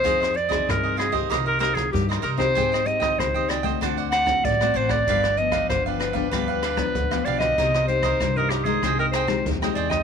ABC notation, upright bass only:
X:1
M:4/4
L:1/8
Q:1/4=96
K:Cm
V:1 name="Upright bass" clef=bass
F,,2 G,,2 C,,2 G,, C, | A,,,2 _D,,2 =D,,2 =A,,, A,,, | G,,,2 G,,,2 D,,2 D,, =B,,, | C,,2 C,,2 C,,2 E,, =E,, |]